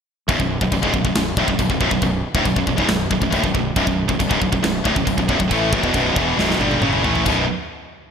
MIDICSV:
0, 0, Header, 1, 4, 480
1, 0, Start_track
1, 0, Key_signature, 2, "minor"
1, 0, Tempo, 435730
1, 310, Time_signature, 4, 2, 24, 8
1, 8933, End_track
2, 0, Start_track
2, 0, Title_t, "Distorted electric guitar"
2, 0, Program_c, 0, 30
2, 312, Note_on_c, 0, 35, 98
2, 317, Note_on_c, 0, 42, 102
2, 418, Note_off_c, 0, 35, 0
2, 420, Note_off_c, 0, 42, 0
2, 431, Note_on_c, 0, 35, 64
2, 433, Note_on_c, 0, 42, 76
2, 621, Note_off_c, 0, 35, 0
2, 622, Note_off_c, 0, 42, 0
2, 679, Note_on_c, 0, 35, 64
2, 687, Note_on_c, 0, 42, 75
2, 778, Note_off_c, 0, 42, 0
2, 779, Note_off_c, 0, 35, 0
2, 791, Note_on_c, 0, 42, 71
2, 792, Note_on_c, 0, 35, 67
2, 900, Note_off_c, 0, 35, 0
2, 900, Note_off_c, 0, 42, 0
2, 904, Note_on_c, 0, 44, 103
2, 905, Note_on_c, 0, 37, 85
2, 1017, Note_off_c, 0, 44, 0
2, 1018, Note_off_c, 0, 37, 0
2, 1028, Note_on_c, 0, 35, 70
2, 1038, Note_on_c, 0, 42, 71
2, 1141, Note_off_c, 0, 35, 0
2, 1142, Note_off_c, 0, 42, 0
2, 1154, Note_on_c, 0, 35, 64
2, 1155, Note_on_c, 0, 42, 75
2, 1267, Note_off_c, 0, 35, 0
2, 1270, Note_off_c, 0, 42, 0
2, 1280, Note_on_c, 0, 35, 70
2, 1281, Note_on_c, 0, 42, 80
2, 1463, Note_off_c, 0, 35, 0
2, 1464, Note_off_c, 0, 42, 0
2, 1517, Note_on_c, 0, 38, 93
2, 1522, Note_on_c, 0, 45, 96
2, 1623, Note_off_c, 0, 38, 0
2, 1625, Note_off_c, 0, 45, 0
2, 1635, Note_on_c, 0, 35, 60
2, 1642, Note_on_c, 0, 42, 69
2, 1739, Note_off_c, 0, 35, 0
2, 1743, Note_off_c, 0, 42, 0
2, 1753, Note_on_c, 0, 35, 73
2, 1756, Note_on_c, 0, 42, 75
2, 1862, Note_off_c, 0, 35, 0
2, 1863, Note_off_c, 0, 42, 0
2, 1875, Note_on_c, 0, 35, 72
2, 1876, Note_on_c, 0, 42, 72
2, 1975, Note_off_c, 0, 35, 0
2, 1983, Note_off_c, 0, 42, 0
2, 1988, Note_on_c, 0, 35, 95
2, 1997, Note_on_c, 0, 42, 115
2, 2093, Note_off_c, 0, 35, 0
2, 2102, Note_off_c, 0, 42, 0
2, 2106, Note_on_c, 0, 35, 64
2, 2113, Note_on_c, 0, 42, 76
2, 2217, Note_off_c, 0, 35, 0
2, 2218, Note_off_c, 0, 42, 0
2, 2230, Note_on_c, 0, 35, 64
2, 2232, Note_on_c, 0, 42, 70
2, 2417, Note_off_c, 0, 35, 0
2, 2418, Note_off_c, 0, 42, 0
2, 2590, Note_on_c, 0, 45, 100
2, 2591, Note_on_c, 0, 38, 91
2, 2698, Note_off_c, 0, 38, 0
2, 2698, Note_off_c, 0, 45, 0
2, 2709, Note_on_c, 0, 35, 67
2, 2709, Note_on_c, 0, 42, 72
2, 2806, Note_off_c, 0, 35, 0
2, 2812, Note_off_c, 0, 42, 0
2, 2819, Note_on_c, 0, 35, 69
2, 2825, Note_on_c, 0, 42, 70
2, 2926, Note_off_c, 0, 35, 0
2, 2930, Note_off_c, 0, 42, 0
2, 2940, Note_on_c, 0, 35, 68
2, 2943, Note_on_c, 0, 42, 76
2, 3044, Note_off_c, 0, 35, 0
2, 3048, Note_on_c, 0, 37, 96
2, 3051, Note_off_c, 0, 42, 0
2, 3055, Note_on_c, 0, 44, 95
2, 3167, Note_off_c, 0, 37, 0
2, 3171, Note_off_c, 0, 44, 0
2, 3176, Note_on_c, 0, 35, 70
2, 3182, Note_on_c, 0, 42, 74
2, 3370, Note_off_c, 0, 35, 0
2, 3373, Note_off_c, 0, 42, 0
2, 3418, Note_on_c, 0, 35, 67
2, 3423, Note_on_c, 0, 42, 75
2, 3524, Note_off_c, 0, 42, 0
2, 3527, Note_off_c, 0, 35, 0
2, 3538, Note_on_c, 0, 42, 72
2, 3540, Note_on_c, 0, 35, 66
2, 3636, Note_off_c, 0, 35, 0
2, 3640, Note_on_c, 0, 38, 95
2, 3651, Note_off_c, 0, 42, 0
2, 3656, Note_on_c, 0, 45, 115
2, 3763, Note_off_c, 0, 38, 0
2, 3771, Note_off_c, 0, 45, 0
2, 3778, Note_on_c, 0, 35, 76
2, 3788, Note_on_c, 0, 42, 86
2, 3887, Note_off_c, 0, 35, 0
2, 3892, Note_off_c, 0, 42, 0
2, 3900, Note_on_c, 0, 35, 66
2, 3905, Note_on_c, 0, 42, 81
2, 4093, Note_off_c, 0, 35, 0
2, 4095, Note_off_c, 0, 42, 0
2, 4146, Note_on_c, 0, 35, 88
2, 4153, Note_on_c, 0, 42, 103
2, 4240, Note_off_c, 0, 35, 0
2, 4244, Note_off_c, 0, 42, 0
2, 4254, Note_on_c, 0, 35, 73
2, 4257, Note_on_c, 0, 42, 75
2, 4450, Note_off_c, 0, 35, 0
2, 4452, Note_off_c, 0, 42, 0
2, 4506, Note_on_c, 0, 35, 70
2, 4511, Note_on_c, 0, 42, 74
2, 4604, Note_off_c, 0, 35, 0
2, 4610, Note_off_c, 0, 42, 0
2, 4618, Note_on_c, 0, 35, 78
2, 4623, Note_on_c, 0, 42, 82
2, 4722, Note_off_c, 0, 35, 0
2, 4727, Note_on_c, 0, 37, 87
2, 4732, Note_off_c, 0, 42, 0
2, 4737, Note_on_c, 0, 44, 109
2, 4848, Note_off_c, 0, 37, 0
2, 4853, Note_off_c, 0, 44, 0
2, 4855, Note_on_c, 0, 35, 63
2, 4861, Note_on_c, 0, 42, 75
2, 4970, Note_off_c, 0, 35, 0
2, 4974, Note_off_c, 0, 42, 0
2, 4984, Note_on_c, 0, 35, 71
2, 4987, Note_on_c, 0, 42, 81
2, 5082, Note_off_c, 0, 35, 0
2, 5086, Note_off_c, 0, 42, 0
2, 5095, Note_on_c, 0, 35, 65
2, 5099, Note_on_c, 0, 42, 71
2, 5292, Note_off_c, 0, 35, 0
2, 5294, Note_off_c, 0, 42, 0
2, 5332, Note_on_c, 0, 38, 94
2, 5342, Note_on_c, 0, 45, 107
2, 5451, Note_off_c, 0, 38, 0
2, 5456, Note_off_c, 0, 45, 0
2, 5464, Note_on_c, 0, 35, 60
2, 5470, Note_on_c, 0, 42, 73
2, 5570, Note_off_c, 0, 35, 0
2, 5582, Note_off_c, 0, 42, 0
2, 5583, Note_on_c, 0, 35, 70
2, 5595, Note_on_c, 0, 42, 73
2, 5705, Note_off_c, 0, 35, 0
2, 5706, Note_off_c, 0, 42, 0
2, 5718, Note_on_c, 0, 35, 71
2, 5720, Note_on_c, 0, 42, 74
2, 5814, Note_off_c, 0, 35, 0
2, 5818, Note_off_c, 0, 42, 0
2, 5827, Note_on_c, 0, 35, 97
2, 5831, Note_on_c, 0, 42, 104
2, 5940, Note_off_c, 0, 35, 0
2, 5942, Note_off_c, 0, 42, 0
2, 5955, Note_on_c, 0, 35, 66
2, 5961, Note_on_c, 0, 42, 82
2, 6071, Note_off_c, 0, 35, 0
2, 6074, Note_off_c, 0, 42, 0
2, 6080, Note_on_c, 0, 45, 100
2, 6084, Note_on_c, 0, 52, 100
2, 6088, Note_on_c, 0, 57, 102
2, 6305, Note_off_c, 0, 45, 0
2, 6306, Note_off_c, 0, 52, 0
2, 6310, Note_on_c, 0, 35, 102
2, 6311, Note_off_c, 0, 57, 0
2, 6311, Note_on_c, 0, 42, 96
2, 6422, Note_off_c, 0, 35, 0
2, 6422, Note_off_c, 0, 42, 0
2, 6431, Note_on_c, 0, 40, 91
2, 6442, Note_on_c, 0, 47, 106
2, 6543, Note_off_c, 0, 40, 0
2, 6548, Note_off_c, 0, 47, 0
2, 6565, Note_on_c, 0, 35, 93
2, 6569, Note_on_c, 0, 47, 105
2, 6570, Note_on_c, 0, 42, 106
2, 6785, Note_off_c, 0, 47, 0
2, 6787, Note_off_c, 0, 35, 0
2, 6792, Note_on_c, 0, 40, 95
2, 6793, Note_off_c, 0, 42, 0
2, 6798, Note_on_c, 0, 47, 92
2, 6800, Note_on_c, 0, 52, 100
2, 7024, Note_off_c, 0, 40, 0
2, 7027, Note_off_c, 0, 47, 0
2, 7028, Note_off_c, 0, 52, 0
2, 7035, Note_on_c, 0, 35, 106
2, 7041, Note_on_c, 0, 42, 92
2, 7044, Note_on_c, 0, 47, 105
2, 7262, Note_off_c, 0, 35, 0
2, 7267, Note_on_c, 0, 43, 92
2, 7269, Note_off_c, 0, 42, 0
2, 7270, Note_off_c, 0, 47, 0
2, 7273, Note_on_c, 0, 50, 105
2, 7280, Note_on_c, 0, 55, 103
2, 7502, Note_off_c, 0, 43, 0
2, 7505, Note_off_c, 0, 50, 0
2, 7509, Note_off_c, 0, 55, 0
2, 7516, Note_on_c, 0, 42, 82
2, 7520, Note_on_c, 0, 54, 107
2, 7523, Note_on_c, 0, 49, 98
2, 7745, Note_off_c, 0, 42, 0
2, 7747, Note_off_c, 0, 49, 0
2, 7749, Note_off_c, 0, 54, 0
2, 7749, Note_on_c, 0, 45, 91
2, 7751, Note_on_c, 0, 52, 88
2, 7754, Note_on_c, 0, 57, 106
2, 7976, Note_off_c, 0, 45, 0
2, 7980, Note_on_c, 0, 35, 102
2, 7985, Note_off_c, 0, 52, 0
2, 7986, Note_off_c, 0, 57, 0
2, 7995, Note_on_c, 0, 42, 104
2, 8000, Note_on_c, 0, 47, 100
2, 8178, Note_off_c, 0, 35, 0
2, 8186, Note_off_c, 0, 42, 0
2, 8188, Note_off_c, 0, 47, 0
2, 8933, End_track
3, 0, Start_track
3, 0, Title_t, "Fingered electric bass"
3, 0, Program_c, 1, 33
3, 316, Note_on_c, 1, 23, 97
3, 424, Note_off_c, 1, 23, 0
3, 436, Note_on_c, 1, 23, 78
3, 654, Note_off_c, 1, 23, 0
3, 674, Note_on_c, 1, 23, 78
3, 782, Note_off_c, 1, 23, 0
3, 791, Note_on_c, 1, 23, 83
3, 900, Note_off_c, 1, 23, 0
3, 914, Note_on_c, 1, 25, 91
3, 1021, Note_off_c, 1, 25, 0
3, 1031, Note_on_c, 1, 23, 79
3, 1139, Note_off_c, 1, 23, 0
3, 1150, Note_on_c, 1, 23, 81
3, 1259, Note_off_c, 1, 23, 0
3, 1270, Note_on_c, 1, 23, 76
3, 1490, Note_off_c, 1, 23, 0
3, 1505, Note_on_c, 1, 26, 86
3, 1615, Note_off_c, 1, 26, 0
3, 1628, Note_on_c, 1, 23, 89
3, 1737, Note_off_c, 1, 23, 0
3, 1749, Note_on_c, 1, 23, 80
3, 1857, Note_off_c, 1, 23, 0
3, 1866, Note_on_c, 1, 23, 83
3, 1976, Note_off_c, 1, 23, 0
3, 1988, Note_on_c, 1, 23, 103
3, 2096, Note_off_c, 1, 23, 0
3, 2108, Note_on_c, 1, 23, 86
3, 2216, Note_off_c, 1, 23, 0
3, 2224, Note_on_c, 1, 23, 84
3, 2446, Note_off_c, 1, 23, 0
3, 2581, Note_on_c, 1, 26, 87
3, 2692, Note_off_c, 1, 26, 0
3, 2703, Note_on_c, 1, 23, 86
3, 2813, Note_off_c, 1, 23, 0
3, 2821, Note_on_c, 1, 23, 82
3, 2932, Note_off_c, 1, 23, 0
3, 2942, Note_on_c, 1, 23, 86
3, 3053, Note_off_c, 1, 23, 0
3, 3064, Note_on_c, 1, 25, 93
3, 3174, Note_off_c, 1, 25, 0
3, 3186, Note_on_c, 1, 23, 85
3, 3407, Note_off_c, 1, 23, 0
3, 3424, Note_on_c, 1, 23, 78
3, 3534, Note_off_c, 1, 23, 0
3, 3540, Note_on_c, 1, 23, 88
3, 3652, Note_off_c, 1, 23, 0
3, 3664, Note_on_c, 1, 26, 101
3, 3774, Note_off_c, 1, 26, 0
3, 3782, Note_on_c, 1, 23, 85
3, 3893, Note_off_c, 1, 23, 0
3, 3903, Note_on_c, 1, 23, 78
3, 4126, Note_off_c, 1, 23, 0
3, 4141, Note_on_c, 1, 23, 100
3, 4253, Note_off_c, 1, 23, 0
3, 4262, Note_on_c, 1, 23, 82
3, 4485, Note_off_c, 1, 23, 0
3, 4507, Note_on_c, 1, 23, 82
3, 4616, Note_off_c, 1, 23, 0
3, 4624, Note_on_c, 1, 23, 84
3, 4735, Note_off_c, 1, 23, 0
3, 4743, Note_on_c, 1, 25, 95
3, 4855, Note_off_c, 1, 25, 0
3, 4863, Note_on_c, 1, 23, 84
3, 4975, Note_off_c, 1, 23, 0
3, 4985, Note_on_c, 1, 23, 85
3, 5096, Note_off_c, 1, 23, 0
3, 5109, Note_on_c, 1, 23, 83
3, 5330, Note_off_c, 1, 23, 0
3, 5347, Note_on_c, 1, 26, 92
3, 5458, Note_off_c, 1, 26, 0
3, 5462, Note_on_c, 1, 23, 90
3, 5573, Note_off_c, 1, 23, 0
3, 5579, Note_on_c, 1, 23, 82
3, 5694, Note_off_c, 1, 23, 0
3, 5699, Note_on_c, 1, 23, 83
3, 5814, Note_off_c, 1, 23, 0
3, 5822, Note_on_c, 1, 23, 101
3, 5936, Note_off_c, 1, 23, 0
3, 5948, Note_on_c, 1, 23, 83
3, 6059, Note_off_c, 1, 23, 0
3, 6068, Note_on_c, 1, 33, 100
3, 6291, Note_off_c, 1, 33, 0
3, 6305, Note_on_c, 1, 23, 91
3, 6418, Note_off_c, 1, 23, 0
3, 6424, Note_on_c, 1, 28, 98
3, 6538, Note_off_c, 1, 28, 0
3, 6547, Note_on_c, 1, 23, 105
3, 6772, Note_off_c, 1, 23, 0
3, 6786, Note_on_c, 1, 28, 92
3, 7011, Note_off_c, 1, 28, 0
3, 7026, Note_on_c, 1, 23, 92
3, 7251, Note_off_c, 1, 23, 0
3, 7258, Note_on_c, 1, 31, 86
3, 7488, Note_off_c, 1, 31, 0
3, 7504, Note_on_c, 1, 30, 98
3, 7731, Note_off_c, 1, 30, 0
3, 7750, Note_on_c, 1, 33, 97
3, 7974, Note_off_c, 1, 33, 0
3, 7996, Note_on_c, 1, 23, 100
3, 8218, Note_off_c, 1, 23, 0
3, 8933, End_track
4, 0, Start_track
4, 0, Title_t, "Drums"
4, 319, Note_on_c, 9, 36, 103
4, 321, Note_on_c, 9, 52, 59
4, 429, Note_off_c, 9, 36, 0
4, 431, Note_off_c, 9, 52, 0
4, 438, Note_on_c, 9, 36, 82
4, 548, Note_off_c, 9, 36, 0
4, 674, Note_on_c, 9, 36, 93
4, 784, Note_off_c, 9, 36, 0
4, 789, Note_on_c, 9, 52, 66
4, 793, Note_on_c, 9, 36, 93
4, 899, Note_off_c, 9, 52, 0
4, 903, Note_off_c, 9, 36, 0
4, 913, Note_on_c, 9, 36, 87
4, 1023, Note_off_c, 9, 36, 0
4, 1032, Note_on_c, 9, 36, 86
4, 1143, Note_off_c, 9, 36, 0
4, 1153, Note_on_c, 9, 36, 85
4, 1263, Note_off_c, 9, 36, 0
4, 1269, Note_on_c, 9, 52, 65
4, 1273, Note_on_c, 9, 38, 115
4, 1379, Note_off_c, 9, 52, 0
4, 1383, Note_off_c, 9, 38, 0
4, 1509, Note_on_c, 9, 36, 112
4, 1619, Note_off_c, 9, 36, 0
4, 1630, Note_on_c, 9, 36, 86
4, 1740, Note_off_c, 9, 36, 0
4, 1751, Note_on_c, 9, 36, 94
4, 1757, Note_on_c, 9, 52, 68
4, 1861, Note_off_c, 9, 36, 0
4, 1867, Note_off_c, 9, 52, 0
4, 1870, Note_on_c, 9, 36, 87
4, 1980, Note_off_c, 9, 36, 0
4, 1989, Note_on_c, 9, 36, 82
4, 2099, Note_off_c, 9, 36, 0
4, 2107, Note_on_c, 9, 36, 91
4, 2217, Note_off_c, 9, 36, 0
4, 2220, Note_on_c, 9, 52, 63
4, 2225, Note_on_c, 9, 36, 86
4, 2330, Note_off_c, 9, 52, 0
4, 2336, Note_off_c, 9, 36, 0
4, 2584, Note_on_c, 9, 36, 119
4, 2695, Note_off_c, 9, 36, 0
4, 2701, Note_on_c, 9, 52, 59
4, 2704, Note_on_c, 9, 36, 98
4, 2811, Note_off_c, 9, 52, 0
4, 2814, Note_off_c, 9, 36, 0
4, 2824, Note_on_c, 9, 36, 82
4, 2935, Note_off_c, 9, 36, 0
4, 2941, Note_on_c, 9, 36, 90
4, 3052, Note_off_c, 9, 36, 0
4, 3063, Note_on_c, 9, 36, 89
4, 3174, Note_off_c, 9, 36, 0
4, 3177, Note_on_c, 9, 52, 60
4, 3181, Note_on_c, 9, 38, 112
4, 3287, Note_off_c, 9, 52, 0
4, 3291, Note_off_c, 9, 38, 0
4, 3424, Note_on_c, 9, 36, 97
4, 3534, Note_off_c, 9, 36, 0
4, 3544, Note_on_c, 9, 36, 91
4, 3654, Note_off_c, 9, 36, 0
4, 3662, Note_on_c, 9, 52, 62
4, 3663, Note_on_c, 9, 36, 100
4, 3772, Note_off_c, 9, 52, 0
4, 3773, Note_off_c, 9, 36, 0
4, 3785, Note_on_c, 9, 36, 83
4, 3895, Note_off_c, 9, 36, 0
4, 3907, Note_on_c, 9, 36, 86
4, 4018, Note_off_c, 9, 36, 0
4, 4144, Note_on_c, 9, 36, 102
4, 4148, Note_on_c, 9, 52, 55
4, 4254, Note_off_c, 9, 36, 0
4, 4258, Note_off_c, 9, 52, 0
4, 4264, Note_on_c, 9, 36, 80
4, 4374, Note_off_c, 9, 36, 0
4, 4505, Note_on_c, 9, 36, 99
4, 4615, Note_off_c, 9, 36, 0
4, 4627, Note_on_c, 9, 36, 94
4, 4638, Note_on_c, 9, 52, 62
4, 4738, Note_off_c, 9, 36, 0
4, 4746, Note_on_c, 9, 36, 92
4, 4748, Note_off_c, 9, 52, 0
4, 4856, Note_off_c, 9, 36, 0
4, 4864, Note_on_c, 9, 36, 88
4, 4975, Note_off_c, 9, 36, 0
4, 4986, Note_on_c, 9, 36, 88
4, 5096, Note_off_c, 9, 36, 0
4, 5107, Note_on_c, 9, 52, 62
4, 5111, Note_on_c, 9, 38, 112
4, 5217, Note_off_c, 9, 52, 0
4, 5221, Note_off_c, 9, 38, 0
4, 5346, Note_on_c, 9, 36, 103
4, 5456, Note_off_c, 9, 36, 0
4, 5466, Note_on_c, 9, 36, 86
4, 5577, Note_off_c, 9, 36, 0
4, 5585, Note_on_c, 9, 36, 98
4, 5588, Note_on_c, 9, 52, 67
4, 5696, Note_off_c, 9, 36, 0
4, 5698, Note_off_c, 9, 52, 0
4, 5706, Note_on_c, 9, 36, 85
4, 5816, Note_off_c, 9, 36, 0
4, 5826, Note_on_c, 9, 36, 86
4, 5936, Note_off_c, 9, 36, 0
4, 5947, Note_on_c, 9, 36, 94
4, 6057, Note_off_c, 9, 36, 0
4, 6068, Note_on_c, 9, 52, 63
4, 6069, Note_on_c, 9, 36, 93
4, 6179, Note_off_c, 9, 36, 0
4, 6179, Note_off_c, 9, 52, 0
4, 6308, Note_on_c, 9, 36, 105
4, 6418, Note_off_c, 9, 36, 0
4, 6427, Note_on_c, 9, 36, 89
4, 6537, Note_off_c, 9, 36, 0
4, 6539, Note_on_c, 9, 52, 66
4, 6547, Note_on_c, 9, 36, 91
4, 6649, Note_off_c, 9, 52, 0
4, 6657, Note_off_c, 9, 36, 0
4, 6790, Note_on_c, 9, 36, 109
4, 6900, Note_off_c, 9, 36, 0
4, 7041, Note_on_c, 9, 38, 68
4, 7151, Note_off_c, 9, 38, 0
4, 7167, Note_on_c, 9, 38, 60
4, 7277, Note_off_c, 9, 38, 0
4, 7281, Note_on_c, 9, 48, 78
4, 7391, Note_off_c, 9, 48, 0
4, 7394, Note_on_c, 9, 48, 74
4, 7504, Note_off_c, 9, 48, 0
4, 7510, Note_on_c, 9, 47, 97
4, 7621, Note_off_c, 9, 47, 0
4, 7631, Note_on_c, 9, 45, 81
4, 7741, Note_off_c, 9, 45, 0
4, 7760, Note_on_c, 9, 43, 100
4, 7870, Note_off_c, 9, 43, 0
4, 7881, Note_on_c, 9, 43, 95
4, 7991, Note_off_c, 9, 43, 0
4, 7995, Note_on_c, 9, 43, 101
4, 7995, Note_on_c, 9, 52, 84
4, 8000, Note_on_c, 9, 36, 99
4, 8105, Note_off_c, 9, 43, 0
4, 8105, Note_off_c, 9, 52, 0
4, 8110, Note_off_c, 9, 36, 0
4, 8933, End_track
0, 0, End_of_file